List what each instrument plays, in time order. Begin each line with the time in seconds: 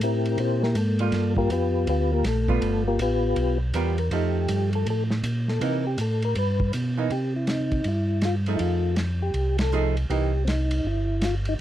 0.00 tonewheel organ A2 C4 E4 G4 A#4, hi-hat pedal, ride
0.25 ride
0.37 tonewheel organ A#2 C4 E4 G4 C5, ride
0.63 tonewheel organ A#3 E4 G4 A#4, snare
0.74 tonewheel organ G#2 A#3 A4, hi-hat pedal, ride
0.99 hollow-body jazz guitar G3 F4, ride
1.12 tonewheel organ G2, snare, ride
1.36 tonewheel organ A#3 F4 G4 A#4, kick
1.49 tonewheel organ F2 B3 F4 G4 B4, hi-hat pedal, ride
1.87 tonewheel organ D2 B3 F4 G4 B4, ride
2.12 tonewheel organ A#3 F4 G4 A#4
2.24 tonewheel organ A#1 A3 A4, snare, hi-hat pedal, ride
2.48 hollow-body jazz guitar G3 B3 F4, kick
2.61 tonewheel organ G1, ride
2.88 tonewheel organ A#3 F4 G4 A#4
2.98 tonewheel organ A1 B3 F4 G4 B4, hi-hat pedal, ride
3.36 tonewheel organ B1, ride
3.74 tonewheel organ E2 G4, hollow-body jazz guitar G3 B3 F4 A#4, hi-hat pedal, ride
3.98 tonewheel organ A#4, ride
4.11 tonewheel organ F2 G4, hollow-body jazz guitar F3 A3 D#4, ride
4.48 tonewheel organ G2, hi-hat pedal, ride
4.73 tonewheel organ A4, ride
4.86 tonewheel organ A2, ride
4.90 tonewheel organ A4
5.11 snare
5.23 tonewheel organ A#2, hi-hat pedal, ride
5.48 tonewheel organ A4, snare
5.61 tonewheel organ C3 A#4, hollow-body jazz guitar E3 A#3 D#4, ride
5.87 tonewheel organ G4
5.98 tonewheel organ A2 A4, hi-hat pedal, ride
6.22 tonewheel organ A#4, ride
6.35 tonewheel organ G2 B4, ride
6.60 kick
6.73 tonewheel organ B2, hi-hat pedal, ride
6.97 hollow-body jazz guitar E3 A#3 D#4
7.10 tonewheel organ C3 G4, ride
7.36 tonewheel organ E4
7.47 tonewheel organ D#4, snare, hi-hat pedal, ride
7.72 kick, ride
7.84 tonewheel organ G2, ride
7.88 tonewheel organ E4
8.22 tonewheel organ F4, snare, hi-hat pedal, ride
8.46 hollow-body jazz guitar F3 A3 D#4 G#4, tonewheel organ D#4, ride
8.56 tonewheel organ F2 E4, ride
8.61 tonewheel organ F4
8.96 snare, hi-hat pedal, ride
9.22 tonewheel organ G4
9.34 tonewheel organ C2, ride
9.59 tonewheel organ A4, snare, ride
9.72 hollow-body jazz guitar F3 A3 D#4 G#4, hi-hat pedal
9.97 ride
10.10 tonewheel organ C2 G4, hollow-body jazz guitar E3 A#3 D#4, ride
10.45 tonewheel organ C4, snare, hi-hat pedal, ride
10.49 tonewheel organ D#4
10.71 ride
10.84 tonewheel organ G1 E4
11.21 tonewheel organ F4, snare, hi-hat pedal, ride
11.45 tonewheel organ D#4, ride